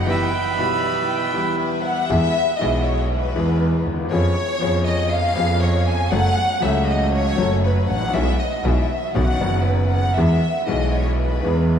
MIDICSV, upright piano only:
0, 0, Header, 1, 2, 480
1, 0, Start_track
1, 0, Key_signature, 4, "major"
1, 0, Tempo, 505051
1, 73, Time_signature, 4, 2, 24, 8
1, 11205, End_track
2, 0, Start_track
2, 0, Title_t, "Upright piano"
2, 0, Program_c, 0, 0
2, 24, Note_on_c, 0, 39, 66
2, 60, Note_on_c, 0, 55, 61
2, 63, Note_on_c, 0, 52, 81
2, 64, Note_on_c, 0, 40, 78
2, 67, Note_on_c, 0, 59, 60
2, 68, Note_on_c, 0, 67, 68
2, 78, Note_off_c, 0, 39, 0
2, 267, Note_off_c, 0, 55, 0
2, 269, Note_off_c, 0, 40, 0
2, 269, Note_off_c, 0, 52, 0
2, 271, Note_off_c, 0, 59, 0
2, 271, Note_off_c, 0, 67, 0
2, 536, Note_on_c, 0, 52, 59
2, 551, Note_on_c, 0, 55, 53
2, 554, Note_on_c, 0, 35, 67
2, 555, Note_on_c, 0, 47, 77
2, 563, Note_on_c, 0, 59, 58
2, 579, Note_on_c, 0, 67, 65
2, 1226, Note_off_c, 0, 52, 0
2, 1234, Note_off_c, 0, 55, 0
2, 1235, Note_off_c, 0, 35, 0
2, 1236, Note_off_c, 0, 47, 0
2, 1240, Note_off_c, 0, 59, 0
2, 1248, Note_off_c, 0, 67, 0
2, 1262, Note_on_c, 0, 52, 69
2, 1274, Note_on_c, 0, 55, 57
2, 1280, Note_on_c, 0, 40, 71
2, 1286, Note_on_c, 0, 59, 53
2, 1301, Note_on_c, 0, 67, 67
2, 1956, Note_off_c, 0, 55, 0
2, 1957, Note_off_c, 0, 52, 0
2, 1958, Note_off_c, 0, 40, 0
2, 1962, Note_off_c, 0, 59, 0
2, 1969, Note_off_c, 0, 67, 0
2, 1988, Note_on_c, 0, 52, 77
2, 1994, Note_on_c, 0, 56, 61
2, 1994, Note_on_c, 0, 59, 60
2, 1998, Note_on_c, 0, 40, 85
2, 1998, Note_on_c, 0, 68, 75
2, 2193, Note_off_c, 0, 56, 0
2, 2193, Note_off_c, 0, 59, 0
2, 2194, Note_off_c, 0, 52, 0
2, 2195, Note_off_c, 0, 40, 0
2, 2195, Note_off_c, 0, 68, 0
2, 2461, Note_on_c, 0, 52, 59
2, 2477, Note_on_c, 0, 56, 62
2, 2482, Note_on_c, 0, 47, 75
2, 2485, Note_on_c, 0, 35, 73
2, 2489, Note_on_c, 0, 59, 60
2, 2506, Note_on_c, 0, 68, 70
2, 3148, Note_off_c, 0, 52, 0
2, 3155, Note_off_c, 0, 56, 0
2, 3158, Note_off_c, 0, 47, 0
2, 3159, Note_off_c, 0, 35, 0
2, 3162, Note_off_c, 0, 59, 0
2, 3170, Note_off_c, 0, 68, 0
2, 3176, Note_on_c, 0, 52, 61
2, 3190, Note_off_c, 0, 52, 0
2, 3190, Note_on_c, 0, 56, 60
2, 3191, Note_on_c, 0, 40, 78
2, 3196, Note_on_c, 0, 52, 78
2, 3201, Note_on_c, 0, 59, 56
2, 3217, Note_on_c, 0, 68, 80
2, 3730, Note_on_c, 0, 38, 42
2, 3788, Note_off_c, 0, 38, 0
2, 3791, Note_on_c, 0, 39, 58
2, 3830, Note_off_c, 0, 40, 0
2, 3845, Note_on_c, 0, 40, 65
2, 3848, Note_off_c, 0, 39, 0
2, 3871, Note_off_c, 0, 56, 0
2, 3874, Note_off_c, 0, 52, 0
2, 3877, Note_off_c, 0, 59, 0
2, 3885, Note_off_c, 0, 68, 0
2, 3905, Note_off_c, 0, 40, 0
2, 3905, Note_on_c, 0, 41, 82
2, 3905, Note_on_c, 0, 53, 81
2, 3910, Note_on_c, 0, 59, 64
2, 3911, Note_on_c, 0, 61, 65
2, 3915, Note_on_c, 0, 68, 77
2, 4106, Note_off_c, 0, 41, 0
2, 4109, Note_off_c, 0, 59, 0
2, 4109, Note_off_c, 0, 61, 0
2, 4110, Note_off_c, 0, 53, 0
2, 4111, Note_off_c, 0, 68, 0
2, 4367, Note_on_c, 0, 53, 72
2, 4376, Note_on_c, 0, 59, 62
2, 4382, Note_on_c, 0, 41, 75
2, 4392, Note_on_c, 0, 61, 61
2, 4402, Note_on_c, 0, 68, 75
2, 5061, Note_off_c, 0, 59, 0
2, 5062, Note_off_c, 0, 53, 0
2, 5064, Note_off_c, 0, 41, 0
2, 5069, Note_off_c, 0, 61, 0
2, 5074, Note_off_c, 0, 68, 0
2, 5077, Note_on_c, 0, 53, 65
2, 5087, Note_on_c, 0, 59, 62
2, 5091, Note_off_c, 0, 53, 0
2, 5093, Note_on_c, 0, 41, 79
2, 5100, Note_on_c, 0, 53, 83
2, 5102, Note_on_c, 0, 61, 63
2, 5118, Note_on_c, 0, 68, 74
2, 5776, Note_off_c, 0, 59, 0
2, 5779, Note_off_c, 0, 41, 0
2, 5783, Note_off_c, 0, 53, 0
2, 5783, Note_off_c, 0, 61, 0
2, 5792, Note_off_c, 0, 68, 0
2, 5813, Note_on_c, 0, 54, 77
2, 5816, Note_on_c, 0, 42, 88
2, 5816, Note_on_c, 0, 61, 67
2, 5817, Note_on_c, 0, 57, 67
2, 5819, Note_on_c, 0, 69, 71
2, 6018, Note_off_c, 0, 54, 0
2, 6019, Note_off_c, 0, 42, 0
2, 6019, Note_off_c, 0, 57, 0
2, 6019, Note_off_c, 0, 61, 0
2, 6020, Note_off_c, 0, 69, 0
2, 6275, Note_on_c, 0, 54, 70
2, 6284, Note_on_c, 0, 57, 64
2, 6287, Note_on_c, 0, 37, 73
2, 6289, Note_on_c, 0, 49, 80
2, 6298, Note_on_c, 0, 61, 60
2, 6310, Note_on_c, 0, 69, 80
2, 6970, Note_off_c, 0, 54, 0
2, 6975, Note_off_c, 0, 57, 0
2, 6976, Note_off_c, 0, 37, 0
2, 6977, Note_off_c, 0, 49, 0
2, 6982, Note_off_c, 0, 61, 0
2, 6988, Note_off_c, 0, 69, 0
2, 6993, Note_on_c, 0, 54, 66
2, 7006, Note_on_c, 0, 57, 59
2, 7008, Note_off_c, 0, 54, 0
2, 7013, Note_on_c, 0, 42, 74
2, 7015, Note_on_c, 0, 54, 73
2, 7020, Note_on_c, 0, 61, 56
2, 7033, Note_on_c, 0, 69, 75
2, 7558, Note_on_c, 0, 32, 47
2, 7615, Note_on_c, 0, 33, 58
2, 7618, Note_off_c, 0, 32, 0
2, 7676, Note_off_c, 0, 33, 0
2, 7680, Note_on_c, 0, 34, 67
2, 7696, Note_off_c, 0, 57, 0
2, 7700, Note_off_c, 0, 42, 0
2, 7701, Note_off_c, 0, 54, 0
2, 7703, Note_off_c, 0, 61, 0
2, 7709, Note_off_c, 0, 69, 0
2, 7731, Note_on_c, 0, 35, 83
2, 7735, Note_on_c, 0, 52, 65
2, 7735, Note_on_c, 0, 56, 62
2, 7735, Note_on_c, 0, 59, 59
2, 7739, Note_off_c, 0, 34, 0
2, 7741, Note_on_c, 0, 47, 77
2, 7743, Note_on_c, 0, 68, 82
2, 7937, Note_off_c, 0, 35, 0
2, 7938, Note_off_c, 0, 52, 0
2, 7938, Note_off_c, 0, 59, 0
2, 7939, Note_off_c, 0, 56, 0
2, 7941, Note_off_c, 0, 47, 0
2, 7942, Note_off_c, 0, 68, 0
2, 8213, Note_on_c, 0, 52, 67
2, 8216, Note_on_c, 0, 56, 54
2, 8216, Note_on_c, 0, 59, 59
2, 8219, Note_on_c, 0, 35, 71
2, 8220, Note_on_c, 0, 47, 82
2, 8223, Note_on_c, 0, 68, 74
2, 8418, Note_off_c, 0, 52, 0
2, 8419, Note_off_c, 0, 56, 0
2, 8419, Note_off_c, 0, 59, 0
2, 8421, Note_off_c, 0, 35, 0
2, 8421, Note_off_c, 0, 47, 0
2, 8423, Note_off_c, 0, 68, 0
2, 8695, Note_on_c, 0, 51, 65
2, 8696, Note_on_c, 0, 47, 84
2, 8697, Note_on_c, 0, 59, 59
2, 8701, Note_on_c, 0, 61, 61
2, 8704, Note_on_c, 0, 35, 79
2, 8707, Note_on_c, 0, 66, 70
2, 8900, Note_off_c, 0, 51, 0
2, 8901, Note_off_c, 0, 47, 0
2, 8901, Note_off_c, 0, 59, 0
2, 8903, Note_off_c, 0, 61, 0
2, 8905, Note_off_c, 0, 35, 0
2, 8906, Note_off_c, 0, 66, 0
2, 8922, Note_on_c, 0, 51, 64
2, 8932, Note_on_c, 0, 59, 57
2, 8940, Note_on_c, 0, 30, 74
2, 8942, Note_on_c, 0, 61, 62
2, 8944, Note_on_c, 0, 42, 71
2, 8962, Note_on_c, 0, 66, 68
2, 9620, Note_off_c, 0, 51, 0
2, 9625, Note_off_c, 0, 59, 0
2, 9629, Note_off_c, 0, 30, 0
2, 9630, Note_off_c, 0, 61, 0
2, 9631, Note_off_c, 0, 42, 0
2, 9640, Note_off_c, 0, 66, 0
2, 9667, Note_on_c, 0, 52, 81
2, 9668, Note_on_c, 0, 56, 63
2, 9669, Note_on_c, 0, 40, 83
2, 9674, Note_on_c, 0, 68, 72
2, 9675, Note_on_c, 0, 59, 65
2, 9870, Note_off_c, 0, 40, 0
2, 9870, Note_off_c, 0, 52, 0
2, 9870, Note_off_c, 0, 56, 0
2, 9873, Note_off_c, 0, 59, 0
2, 9873, Note_off_c, 0, 68, 0
2, 10133, Note_on_c, 0, 52, 65
2, 10140, Note_on_c, 0, 56, 64
2, 10146, Note_on_c, 0, 47, 71
2, 10153, Note_on_c, 0, 35, 79
2, 10159, Note_on_c, 0, 59, 60
2, 10164, Note_on_c, 0, 68, 68
2, 10829, Note_off_c, 0, 52, 0
2, 10832, Note_off_c, 0, 56, 0
2, 10835, Note_off_c, 0, 47, 0
2, 10838, Note_off_c, 0, 35, 0
2, 10841, Note_off_c, 0, 59, 0
2, 10844, Note_off_c, 0, 68, 0
2, 10860, Note_on_c, 0, 52, 76
2, 10874, Note_on_c, 0, 56, 59
2, 10877, Note_on_c, 0, 40, 77
2, 10888, Note_on_c, 0, 59, 62
2, 10900, Note_on_c, 0, 68, 69
2, 11205, Note_off_c, 0, 40, 0
2, 11205, Note_off_c, 0, 52, 0
2, 11205, Note_off_c, 0, 56, 0
2, 11205, Note_off_c, 0, 59, 0
2, 11205, Note_off_c, 0, 68, 0
2, 11205, End_track
0, 0, End_of_file